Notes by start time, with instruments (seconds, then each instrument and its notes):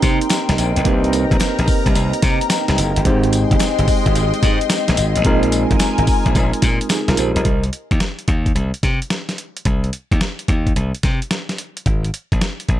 Already playing: tine electric piano A#3 C4 D#4 G4 C5, analog synth pad D#4 A#4 G5 C6
0.02 slap bass C3, kick, snare, closed hi-hat, tambourine
0.21 closed hi-hat
0.30 snare, clap, closed hi-hat, tambourine
0.49 slap bass C2, snare, closed hi-hat
0.58 slap bass A#1, closed hi-hat, tambourine
0.76 slap bass B1, closed hi-hat
0.84 slap bass C2, tine electric piano A#3 C4 D#4 G4 B4, analog synth pad A#5, kick, closed hi-hat
0.93 tine electric piano C5
1.04 closed hi-hat
1.13 closed hi-hat, tambourine
1.31 slap bass A#1, kick, closed hi-hat
1.40 snare, clap, closed hi-hat, tambourine
1.59 slap bass A#1, closed hi-hat
1.68 kick, open hi-hat, tambourine
1.86 slap bass C2, kick, closed hi-hat
1.95 slap bass C2, closed hi-hat, tambourine
2.13 closed hi-hat
2.22 slap bass C3, kick, snare, closed hi-hat, tambourine
2.41 closed hi-hat
2.50 snare, clap, closed hi-hat, tambourine
2.68 slap bass C2, snare, closed hi-hat
2.78 slap bass F#1, closed hi-hat, tambourine
2.96 slap bass G1, closed hi-hat
3.05 slap bass G#1, tine electric piano G#3 C4 D#4 G4 C5, analog synth pad G#3 D#5 G5 C6, kick, closed hi-hat
3.23 closed hi-hat
3.33 closed hi-hat, tambourine
3.51 slap bass G1, kick, closed hi-hat
3.60 snare, clap, closed hi-hat, tambourine
3.79 slap bass G1, closed hi-hat
3.88 kick, open hi-hat, tambourine
4.06 slap bass G#1, kick, closed hi-hat
4.15 slap bass G#1, closed hi-hat, tambourine
4.34 closed hi-hat
4.43 slap bass G#2, kick, snare, closed hi-hat, tambourine
4.61 closed hi-hat
4.70 snare, clap, closed hi-hat, tambourine
4.88 slap bass A#1, snare, closed hi-hat
4.97 slap bass G#1, closed hi-hat, tambourine
5.16 slap bass A1, closed hi-hat
5.25 slap bass A#1, tine electric piano G#3 C4 D#4 F4 A#4, analog synth pad A#4 G#5, kick, closed hi-hat
5.43 closed hi-hat
5.52 closed hi-hat, tambourine
5.71 slap bass G#1, kick, closed hi-hat
5.80 snare, clap, closed hi-hat, tambourine
5.98 slap bass G#1, closed hi-hat
6.07 kick, open hi-hat, tambourine
6.26 slap bass A#1, kick, closed hi-hat
6.35 slap bass A#1, kick, closed hi-hat, tambourine
6.53 closed hi-hat
6.62 slap bass A#2, kick, snare, closed hi-hat, tambourine
6.81 closed hi-hat
6.90 tine electric piano D#4 G#4, snare, clap, closed hi-hat, tambourine
7.08 slap bass C2, tine electric piano F4 A#4, snare, closed hi-hat
7.17 slap bass A#1, tine electric piano G4 C5, closed hi-hat, tambourine
7.36 slap bass B1, tine electric piano A#4 D#5, closed hi-hat
7.45 slap bass C2, kick, closed hi-hat
7.64 closed hi-hat
7.73 closed hi-hat
7.91 slap bass D#2, kick, closed hi-hat
8.00 snare, closed hi-hat
8.19 closed hi-hat
8.28 slap bass D#2, kick, closed hi-hat
8.46 kick, closed hi-hat
8.55 slap bass C2, closed hi-hat
8.74 closed hi-hat
8.83 slap bass C3, kick, snare, closed hi-hat
9.02 closed hi-hat
9.10 snare, closed hi-hat
9.29 snare, closed hi-hat
9.38 closed hi-hat
9.57 closed hi-hat
9.65 slap bass C2, kick, closed hi-hat
9.84 closed hi-hat
9.93 closed hi-hat
10.11 slap bass D#2, kick, closed hi-hat
10.21 snare, closed hi-hat
10.39 closed hi-hat
10.48 slap bass D#2, kick, closed hi-hat
10.67 kick, closed hi-hat
10.76 slap bass C2, closed hi-hat
10.95 closed hi-hat
11.03 slap bass C3, kick, snare, closed hi-hat
11.22 closed hi-hat
11.31 snare, closed hi-hat
11.49 snare, closed hi-hat
11.58 closed hi-hat
11.77 closed hi-hat
11.86 slap bass G#1, kick, closed hi-hat
12.04 closed hi-hat
12.14 closed hi-hat
12.32 slap bass A#1, kick, closed hi-hat
12.41 snare, closed hi-hat
12.60 closed hi-hat
12.69 slap bass A#1, kick, closed hi-hat